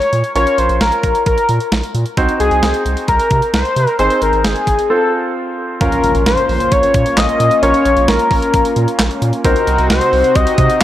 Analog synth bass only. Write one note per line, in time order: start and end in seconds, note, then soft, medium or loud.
0.13 0.23 A#2 loud
0.35 0.46 A#1 loud
0.58 0.68 A#1 medium
0.70 0.80 A#1 loud
0.81 0.91 A#1 loud
1.03 1.14 A#1 loud
1.26 1.37 A#1 loud
1.49 1.59 A#2 loud
1.72 1.82 A#1 loud
1.95 2.05 A#2 loud
2.17 2.28 C2 loud
2.40 2.50 C2 loud
2.51 2.62 C2 medium
2.63 2.73 C2 loud
2.85 2.96 C2 loud
3.08 3.19 C2 loud
3.31 3.41 C3 loud
3.54 3.64 C2 loud
3.76 3.87 C3 medium
3.99 4.09 G#1 loud
4.22 4.32 G#1 loud
4.33 4.43 G#1 medium
4.45 4.55 G#1 medium
4.67 4.77 G#1 loud
5.81 5.91 A#1 loud
6.04 6.14 A#1 medium
6.15 6.25 A#1 medium
6.26 6.37 A#1 loud
6.49 6.59 A#1 loud
6.72 6.82 A#1 loud
6.94 7.05 A#2 loud
7.17 7.27 A#1 loud
7.40 7.50 A#2 loud
7.63 7.73 A#1 loud
7.85 7.96 A#1 medium
7.97 8.07 A#1 loud
8.08 8.18 A#1 loud
8.31 8.41 A#1 loud
8.54 8.64 A#1 loud
8.76 8.87 A#2 loud
8.99 9.09 A#1 loud
9.22 9.32 A#2 loud
9.45 9.55 C2 loud
9.67 9.78 C2 loud
9.79 9.89 C2 loud
9.90 10.00 C2 loud
10.13 10.23 C2 loud
10.36 10.46 C2 loud
10.58 10.68 C3 loud